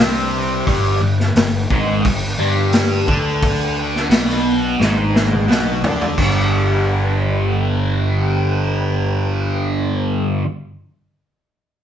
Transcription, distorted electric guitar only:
0.00 0.65 C3 medium
0.00 0.65 C4 loud
0.65 0.99 G2 loud
0.65 1.00 G3 loud
1.01 1.28 G2 medium
1.36 1.63 G2 medium
1.70 2.03 G#2 medium
1.70 2.04 G#3 loud
2.04 2.32 G2 medium
2.38 3.06 G2 medium
2.38 3.06 G3 medium
3.07 4.09 D3 loud
3.07 4.09 D4 loud
4.09 4.78 B2 medium
4.09 4.78 B3 medium
4.80 5.47 G#2 medium
4.80 5.48 G#3 loud
5.47 5.81 B2 medium
5.47 5.82 B3 medium
5.83 6.17 D3 medium
5.83 6.16 D4 loud
6.18 10.43 G2 loud
6.18 10.44 D3 medium
6.22 10.45 G3 loud

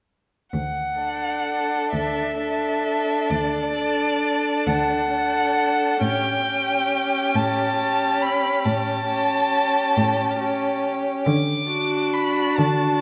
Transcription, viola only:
0.99 2.37 D4 soft
2.40 3.73 D4 soft
3.76 5.09 D4 soft
5.11 5.99 D4 soft
6.01 6.45 C#4 soft
6.46 7.76 C#4 soft
7.79 9.07 C#4 soft
9.08 10.37 C#4 soft
10.39 11.26 C#4 soft
11.70 12.99 D4 soft

